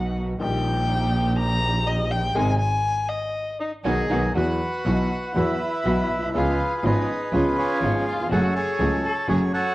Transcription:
0.00 0.31 B1 medium
0.00 0.32 B1 medium
0.00 0.32 B2 medium
0.00 0.31 D#3 medium
0.00 0.32 F#3 medium
0.00 0.31 B3 medium
0.00 0.32 B3 soft
0.00 0.31 D#4 medium
0.00 0.31 F#4 medium
0.00 0.33 F#4 medium
0.00 0.14 F#5 medium
0.39 2.26 A#1 medium
0.39 2.26 A#2 medium
0.39 2.25 D#3 medium
0.39 2.25 G3 medium
0.39 2.26 A#3 medium
0.39 2.26 A#3 soft
0.39 2.26 D#4 medium
0.39 2.26 G4 medium
0.39 2.27 G4 medium
0.39 1.34 G5 loud
1.39 1.88 A#5 loud
1.87 2.13 D#5 medium
2.11 2.37 G5 medium
2.35 2.54 G#1 medium
2.35 2.51 C3 medium
2.35 2.51 D#3 loud
2.35 2.51 G#3 medium
2.35 2.51 C4 medium
2.35 2.51 D#4 medium
2.35 2.51 G#4 medium
2.35 2.59 G#5 medium
2.60 3.10 G#5 loud
3.09 3.60 D#5 medium
3.60 3.72 D#4 medium
3.60 3.71 D#5 medium
3.85 4.04 B1 medium
3.85 4.02 B2 medium
3.85 4.02 D#3 medium
3.85 4.01 F#3 medium
3.85 4.01 B3 medium
3.85 4.01 D#4 medium
3.85 4.01 F#4 medium
3.85 4.32 G#4 medium
3.85 4.33 D#5 medium
3.85 4.32 G#5 medium
4.10 4.29 B1 medium
4.10 4.27 B2 medium
4.10 4.27 D#3 medium
4.10 4.27 F#3 medium
4.10 4.26 B3 medium
4.10 4.26 D#4 medium
4.10 4.26 F#4 medium
4.34 4.56 E2 medium
4.34 4.57 E2 medium
4.34 4.57 E3 medium
4.34 4.57 F#3 medium
4.34 4.56 B3 medium
4.34 4.57 B3 medium
4.34 4.56 E4 medium
4.34 4.57 F#4 medium
4.34 5.32 F#4 medium
4.34 5.33 B4 medium
4.34 5.39 F#5 medium
4.85 5.07 B1 medium
4.85 5.07 B2 medium
4.85 5.07 E3 medium
4.85 5.07 F#3 medium
4.85 5.06 B3 medium
4.85 5.07 B3 medium
4.85 5.07 E4 medium
4.85 5.07 F#4 medium
5.35 5.56 E2 medium
5.35 5.57 E2 medium
5.35 5.57 E3 medium
5.35 5.57 F#3 medium
5.35 5.56 B3 medium
5.35 5.57 B3 medium
5.35 5.56 E4 medium
5.35 6.30 E4 medium
5.35 5.56 F#4 medium
5.35 5.57 F#4 medium
5.35 6.31 B4 medium
5.35 6.38 E5 medium
5.84 6.06 B1 medium
5.84 6.06 B2 medium
5.84 6.06 E3 medium
5.84 6.06 F#3 medium
5.84 6.06 B3 medium
5.84 6.06 E4 medium
5.84 6.06 F#4 medium
6.09 6.33 B1 soft
6.17 6.23 A#1 soft
6.22 6.28 B1 medium
6.29 6.35 C2 medium
6.34 6.55 C#2 medium
6.34 6.55 C#3 medium
6.34 6.55 F3 medium
6.34 6.55 B3 medium
6.34 6.55 C#4 medium
6.34 6.55 F4 medium
6.34 6.74 F4 medium
6.34 6.56 G#4 medium
6.34 6.84 G#4 medium
6.34 6.84 B4 medium
6.34 6.75 F5 medium
6.78 6.84 F4 soft
6.78 6.84 F5 medium
6.83 7.04 G#1 medium
6.83 7.05 G#1 medium
6.83 7.05 G#2 medium
6.83 7.04 F3 medium
6.83 7.04 B3 medium
6.83 7.05 C#4 medium
6.83 7.30 D#4 medium
6.83 7.05 F4 medium
6.83 7.05 G#4 medium
6.83 7.32 G#4 medium
6.83 7.79 B4 medium
6.83 7.30 D#5 medium
7.32 7.53 C#2 medium
7.32 7.54 C#2 medium
7.32 7.54 C#3 medium
7.32 7.54 F3 medium
7.32 7.53 B3 medium
7.32 7.54 B3 medium
7.32 7.53 C#4 medium
7.32 7.54 C#4 medium
7.32 7.45 C#4 medium
7.32 7.53 F4 medium
7.32 7.57 F4 medium
7.32 7.54 G#4 medium
7.32 7.57 G#4 medium
7.32 7.45 C#5 medium
7.58 8.04 C#4 medium
7.58 8.27 F4 medium
7.58 8.28 G#4 medium
7.58 8.08 C#5 medium
7.81 8.02 G#1 medium
7.81 8.03 G#1 medium
7.81 8.03 G#2 medium
7.81 8.02 F3 medium
7.81 8.02 B3 medium
7.81 8.03 B3 medium
7.81 8.02 C#4 medium
7.81 8.03 C#4 medium
7.81 8.02 F4 medium
7.81 8.03 G#4 medium
8.07 8.30 F4 medium
8.07 8.30 F5 medium
8.13 8.19 D#2 soft
8.20 8.25 E2 medium
8.26 8.31 F2 medium
8.30 8.51 F#1 medium
8.30 8.52 F#2 medium
8.30 8.52 F#3 medium
8.30 8.51 A3 medium
8.30 8.52 A3 medium
8.30 8.52 C#4 medium
8.30 8.51 F#4 medium
8.30 8.54 F#4 medium
8.30 8.51 G#4 medium
8.30 8.52 G#4 medium
8.30 9.25 A4 medium
8.30 8.54 C#5 medium
8.30 8.54 F#5 medium
8.56 9.01 G#4 medium
8.56 9.28 C#5 medium
8.56 9.06 G#5 medium
8.79 9.00 C#2 medium
8.79 9.00 C#3 medium
8.79 9.00 F#3 medium
8.79 9.00 A3 medium
8.79 9.00 C#4 medium
8.79 9.00 F#4 medium
8.79 9.00 G#4 medium
9.04 9.27 A4 medium
9.04 9.27 A5 medium
9.28 9.49 F#1 medium
9.28 9.49 F#2 medium
9.28 9.49 F#3 medium
9.28 9.49 A3 medium
9.28 9.49 C#4 medium
9.28 9.49 F#4 medium
9.28 9.49 G#4 medium
9.28 9.40 G#4 medium
9.28 9.52 C#5 medium
9.28 9.40 G#5 medium
9.54 9.75 F#4 medium
9.54 9.75 A4 medium
9.54 9.75 C#5 medium
9.54 9.75 F#5 loud

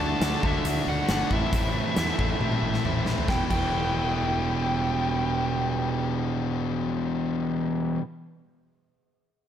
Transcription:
0.00 0.13 D2 medium
0.00 0.20 D3 medium
0.00 0.22 A3 medium
0.00 0.22 D4 medium
0.00 0.22 F#4 medium
0.00 0.45 A5 medium
0.20 0.35 D2 medium
0.20 0.65 D3 medium
0.20 0.45 A3 loud
0.20 0.44 D4 loud
0.20 0.42 F#4 medium
0.20 snare loud
0.20 closed hi-hat medium
0.43 0.57 D2 medium
0.43 1.08 A3 soft
0.43 1.09 D4 medium
0.43 1.10 F#4 medium
0.43 0.85 E5 medium
0.43 kick medium
0.64 0.78 D2 medium
0.64 1.09 D3 medium
0.64 0.89 A3 medium
0.64 0.88 D4 medium
0.64 0.87 F#4 medium
0.64 closed hi-hat medium
0.87 1.01 D2 medium
0.87 1.31 A3 medium
0.87 1.31 D4 medium
0.87 1.30 F#4 medium
0.87 1.10 F#5 medium
1.09 1.23 G1 medium
1.09 1.30 D3 medium
1.09 1.30 A3 medium
1.09 1.30 D4 medium
1.09 1.31 F#4 medium
1.09 1.31 F#5 medium
1.09 snare loud
1.09 closed hi-hat medium
1.31 1.45 A1 medium
1.31 1.52 A2 medium
1.31 1.53 E3 medium
1.31 1.53 A3 medium
1.31 1.54 C4 medium
1.31 1.54 E4 medium
1.31 3.03 E5 medium
1.31 kick medium
1.52 1.80 A1 medium
1.52 1.96 A2 medium
1.52 1.97 E3 medium
1.52 1.77 A3 medium
1.52 1.76 C4 medium
1.52 1.74 E4 loud
1.52 kick loud
1.52 closed hi-hat medium
1.75 1.97 A3 medium
1.75 1.98 C4 medium
1.75 1.98 E4 medium
1.96 2.11 E2 medium
1.96 2.41 A2 medium
1.96 2.41 E3 medium
1.96 2.19 A3 medium
1.96 2.19 C4 medium
1.96 2.17 E4 medium
1.96 snare medium
1.96 closed hi-hat soft
2.19 2.33 A1 medium
2.19 2.84 A3 medium
2.19 2.85 C4 soft
2.19 2.86 E4 medium
2.19 kick medium
2.40 2.54 A1 medium
2.40 2.84 A2 medium
2.40 2.84 E3 medium
2.40 2.63 A3 medium
2.40 2.62 C4 medium
2.40 2.62 E4 medium
2.40 high tom medium
2.52 high tom soft
2.63 2.77 A1 medium
2.63 3.07 A3 medium
2.63 3.06 C4 soft
2.63 3.04 E4 medium
2.74 snare soft
2.84 3.12 A1 medium
2.84 3.27 E3 medium
2.84 3.07 A3 medium
2.84 3.07 C4 medium
2.84 3.06 E4 medium
2.84 mid tom medium
3.06 3.28 A3 soft
3.06 3.28 C4 medium
3.06 3.27 E4 medium
3.06 snare medium
3.18 floor tom medium
3.28 3.40 E1 medium
3.28 3.50 E2 medium
3.28 3.51 B2 medium
3.28 3.52 E3 medium
3.28 3.52 G3 medium
3.28 3.53 B3 medium
3.28 3.41 G5 medium
3.28 kick medium
3.28 snare medium
3.32 3.54 E4 medium
3.50 7.97 E1 medium
3.50 8.00 E2 medium
3.50 8.01 B2 medium
3.50 8.02 E3 medium
3.50 8.03 G3 medium
3.50 8.03 B3 medium
3.50 7.56 G5 medium
3.50 kick medium
3.50 crash medium
3.54 8.04 E4 medium

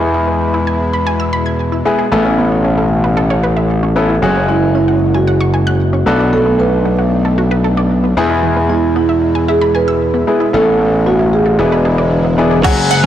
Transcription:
0.00 1.82 E2 medium
0.00 4.18 B2 medium
0.00 0.59 G#3 medium
0.00 2.09 G#3 medium
0.00 0.08 G#3 medium
0.00 0.59 B3 medium
0.00 0.59 E4 medium
0.00 2.09 E4 medium
0.00 0.59 G#4 loud
0.14 0.21 E4 medium
0.27 0.34 B3 medium
0.54 0.61 E4 medium
0.67 0.74 G#5 medium
0.93 1.00 B5 medium
1.07 1.13 G#5 medium
1.20 1.26 E6 medium
1.33 1.40 B5 medium
1.46 1.53 G#6 medium
1.72 1.79 E4 medium
1.85 2.03 G#3 medium
1.85 1.92 B3 medium
1.85 2.03 B3 medium
1.85 2.03 E4 medium
1.85 2.03 G#4 medium
1.99 2.05 G#4 medium
2.12 4.18 A1 medium
2.12 2.18 A3 medium
2.12 4.20 A3 medium
2.12 2.82 B3 medium
2.12 2.83 C#4 medium
2.12 4.20 C#4 medium
2.12 2.83 E4 medium
2.12 2.83 A4 medium
2.25 2.32 C#4 medium
2.38 2.45 B3 medium
2.64 2.71 C#4 medium
2.78 2.84 A4 medium
3.04 3.11 B4 medium
3.17 3.24 A4 loud
3.30 3.37 C#5 medium
3.43 3.50 B4 medium
3.57 3.63 E5 medium
3.83 3.90 C#4 medium
3.96 4.14 B3 medium
3.96 4.03 B3 medium
3.96 4.14 C#4 medium
3.96 4.14 E4 medium
3.96 4.14 A4 medium
4.09 4.16 E4 medium
4.22 6.03 F#1 medium
4.22 6.05 C#3 medium
4.22 4.29 F#3 medium
4.22 4.93 G#3 medium
4.22 6.05 G#3 medium
4.22 4.93 C#4 medium
4.22 4.93 F#4 medium
4.22 6.05 F#4 medium
4.22 4.93 G#4 medium
4.35 4.42 C#4 medium
4.48 4.55 G#3 medium
4.48 4.73 E4 medium
4.75 4.82 C#4 medium
4.75 5.12 E4 medium
4.88 4.95 F#5 medium
5.14 6.36 F#4 medium
5.14 5.21 G#5 medium
5.27 5.34 F#5 medium
5.41 5.47 C#6 medium
5.54 5.60 G#5 medium
5.67 5.74 F#6 medium
5.93 6.00 C#4 medium
6.06 8.13 B1 medium
6.06 11.55 B2 medium
6.06 6.13 A3 medium
6.06 8.15 A3 medium
6.06 6.91 B3 medium
6.06 6.91 D4 medium
6.06 8.15 D4 medium
6.06 6.91 F#4 medium
6.06 6.91 A4 loud
6.19 6.26 D4 medium
6.33 6.39 F#3 medium
6.33 6.60 A4 loud
6.46 6.53 B3 medium
6.59 6.66 A3 medium
6.59 8.13 B4 medium
6.85 6.92 B3 medium
6.99 7.05 F#4 medium
7.25 7.32 A4 medium
7.38 7.45 F#4 medium
7.51 7.58 B4 medium
7.64 7.71 A4 medium
7.77 7.84 D5 medium
8.04 8.11 B3 medium
8.17 10.24 E2 medium
8.17 9.01 G#3 medium
8.17 8.24 G#3 medium
8.17 10.52 G#3 medium
8.17 9.01 B3 medium
8.17 10.52 E4 medium
8.17 9.01 E4 medium
8.17 9.01 G#4 loud
8.30 8.37 E4 medium
8.43 8.50 E3 medium
8.56 8.63 B3 medium
8.69 8.76 G#3 medium
8.69 8.94 E4 medium
8.96 9.03 B3 medium
8.96 9.50 E4 medium
9.09 9.16 E5 medium
9.35 9.42 G#5 medium
9.48 9.76 G#4 medium
9.48 9.55 E5 medium
9.61 9.68 B5 medium
9.75 10.50 B4 loud
9.75 9.81 G#5 medium
9.88 9.95 E6 medium
10.14 10.21 B3 medium
10.27 10.45 G#3 medium
10.27 10.34 G#3 medium
10.27 10.45 B3 medium
10.27 10.45 E4 medium
10.27 10.45 G#4 medium
10.40 10.47 E4 medium
10.53 11.57 A1 medium
10.53 10.60 E3 medium
10.53 11.58 A3 medium
10.53 11.24 B3 medium
10.53 11.25 C#4 medium
10.53 11.58 C#4 medium
10.53 11.25 E4 medium
10.53 11.25 A4 medium
10.53 11.08 A4 loud
10.67 10.73 B3 medium
10.80 10.87 A3 medium
11.06 11.13 B3 medium
11.06 11.34 F#4 medium
11.19 11.26 E4 medium
11.33 12.08 G#4 medium
11.46 11.53 A4 medium
11.59 12.62 E1 medium
11.59 12.63 D3 medium
11.59 12.63 G#3 medium
11.59 12.22 B3 medium
11.59 12.22 D4 medium
11.59 11.66 E4 loud
11.59 12.22 E4 medium
11.59 12.63 E4 medium
11.59 12.22 G#4 medium
11.72 11.79 B4 medium
11.85 11.92 G#4 medium
11.98 12.05 D5 medium
12.25 12.31 B3 medium
12.38 12.45 G#3 medium
12.38 12.56 B3 medium
12.38 12.56 D4 medium
12.38 12.56 E4 medium
12.38 12.56 G#4 medium
12.51 12.58 D4 medium
12.64 13.06 F#1 loud
12.64 13.06 F#3 loud
12.64 13.06 G#3 medium
12.64 13.06 C#4 medium
12.64 12.73 F#4 medium
12.64 13.06 F#4 medium
12.64 13.06 G#4 loud
12.64 kick loud
12.64 closed hi-hat medium
12.64 crash loud
12.91 13.02 F#5 medium
12.91 muted clean electric guitar stroke soft
12.91 closed hi-hat medium

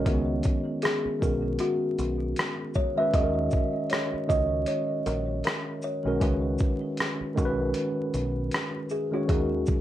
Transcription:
0.05 0.40 C#2 loud
0.05 0.95 D#3 medium
0.05 0.95 G#3 medium
0.05 0.97 B3 medium
0.05 0.95 C#4 medium
0.05 0.96 F#4 medium
0.05 0.85 A#4 medium
0.05 kick loud
0.05 closed hi-hat medium
0.43 kick loud
0.43 closed hi-hat medium
0.43 shaker medium
0.82 1.62 G#4 medium
0.82 cross-stick loud
0.82 closed hi-hat medium
1.06 muted picked electric bass stroke soft
1.19 1.56 B1 medium
1.19 2.37 D#3 medium
1.19 2.38 G#3 medium
1.19 2.38 C#4 medium
1.19 2.39 F#4 medium
1.19 2.39 A#4 medium
1.19 kick medium
1.19 shaker medium
1.59 2.71 F#4 medium
1.59 closed hi-hat medium
1.99 2.33 B1 medium
1.99 closed hi-hat soft
1.99 shaker soft
2.36 cross-stick loud
2.36 closed hi-hat medium
2.74 2.98 C#5 loud
2.74 kick medium
2.74 shaker soft
2.96 3.09 D#3 medium
2.96 3.10 G#3 medium
2.96 3.10 C#4 medium
2.96 3.10 F#4 medium
2.96 3.11 B4 medium
2.96 3.14 E5 medium
3.13 3.48 D#2 loud
3.13 4.02 D#3 medium
3.13 4.03 G#3 medium
3.13 4.03 C#4 medium
3.13 4.04 F#4 medium
3.13 3.23 G#4 medium
3.13 3.93 D#5 medium
3.13 kick loud
3.13 closed hi-hat medium
3.23 4.08 A#4 medium
3.51 kick loud
3.51 shaker medium
3.90 4.30 C#5 loud
3.90 cross-stick loud
3.90 closed hi-hat medium
4.14 muted picked electric bass stroke soft
4.27 4.64 C#2 medium
4.27 5.45 D#3 medium
4.27 5.46 G#3 medium
4.27 5.46 C#4 medium
4.27 5.46 F#4 medium
4.27 5.47 C#5 medium
4.27 4.69 D#5 medium
4.27 kick medium
4.27 shaker soft
4.66 4.85 C#5 medium
4.66 closed hi-hat medium
5.06 5.41 A#1 medium
5.06 5.44 A#4 medium
5.06 closed hi-hat soft
5.06 shaker soft
5.44 5.62 A#4 medium
5.44 cross-stick loud
5.44 closed hi-hat medium
5.82 6.01 C#5 medium
5.82 shaker soft
6.04 6.20 B1 medium
6.04 6.17 D#3 medium
6.04 6.17 G#3 medium
6.04 6.18 C#4 medium
6.04 6.18 F#4 medium
6.04 6.19 A#4 medium
6.19 6.56 C#2 loud
6.19 7.09 D#3 medium
6.19 7.10 G#3 medium
6.19 7.10 C#4 medium
6.19 7.11 F#4 medium
6.19 7.33 B4 medium
6.19 7.11 B4 medium
6.19 kick loud
6.19 closed hi-hat medium
6.58 kick loud
6.58 shaker medium
6.97 cross-stick loud
6.97 closed hi-hat medium
7.21 muted picked electric bass stroke soft
7.34 7.72 B1 medium
7.34 8.53 D#3 medium
7.34 8.53 G#3 medium
7.34 8.54 C#4 medium
7.34 8.54 F#4 medium
7.34 7.45 A#4 medium
7.34 kick medium
7.34 shaker soft
7.45 8.58 B4 loud
7.74 closed hi-hat medium
8.14 8.48 B1 medium
8.14 closed hi-hat soft
8.14 shaker soft
8.51 cross-stick loud
8.51 closed hi-hat medium
8.89 9.14 G#4 medium
8.89 shaker soft
9.11 9.24 D#3 medium
9.11 9.25 G#3 medium
9.11 9.25 C#4 medium
9.11 9.28 F#4 medium
9.11 9.26 F#4 medium
9.11 9.26 C#5 medium
9.27 9.64 D#2 loud
9.27 9.81 D#3 medium
9.27 9.81 G#3 medium
9.27 9.81 C#4 medium
9.27 9.81 F#4 medium
9.27 9.81 G#4 medium
9.27 9.81 A#4 medium
9.27 kick medium
9.27 closed hi-hat medium
9.66 kick loud
9.66 shaker medium

